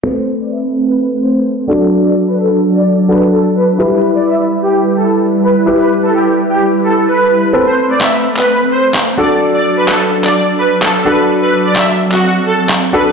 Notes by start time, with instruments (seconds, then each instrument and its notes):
0.04 string machine A3 C4 B4, grand piano C4 A4 B4
0.16 supersaw synth C5
0.40 supersaw synth D5
0.51 supersaw synth E5
0.87 supersaw synth B4
1.21 supersaw synth C5
1.68 string machine F#3 D4 A4, grand piano D4 F#4 A4, supersaw synth D5
2.04 supersaw synth D5
2.27 supersaw synth B4
2.39 supersaw synth A4
2.74 supersaw synth D5
3.08 grand piano D4 F#4 A4, supersaw synth B4
3.32 supersaw synth A4
3.56 supersaw synth B4
3.78 string machine G3 E4 B4, grand piano E4 G4 B4
3.92 supersaw synth B4
4.15 supersaw synth D5
4.26 supersaw synth E5
4.62 supersaw synth G4
4.96 supersaw synth A4
5.43 supersaw synth B4
5.66 grand piano E4 G4 B4
5.79 supersaw synth B4
6.03 supersaw synth A4
6.14 supersaw synth G4
6.50 supersaw synth G4
6.84 supersaw synth A4
7.08 supersaw synth B4
7.53 string machine A3 C4, grand piano C4 A4 B4
7.66 supersaw synth C5
7.90 supersaw synth D5
8.01 supersaw synth E5, clap
8.37 supersaw synth B4, clap
8.71 supersaw synth C5
8.94 clap
9.18 string machine F#3 D4 A4, grand piano D4 F#4 A4, supersaw synth D5
9.54 supersaw synth D5
9.77 supersaw synth B4
9.88 supersaw synth A4, clap
10.24 supersaw synth D5, clap
10.58 supersaw synth B4
10.82 supersaw synth A4, clap
11.05 grand piano D4 F#4 A4, supersaw synth B4
11.41 supersaw synth B4
11.65 supersaw synth D5
11.76 supersaw synth E5, clap
11.99 string machine C4
12.12 supersaw synth F#4, clap
12.46 supersaw synth A4
12.69 clap
12.93 grand piano D4 F#4 A4, supersaw synth B4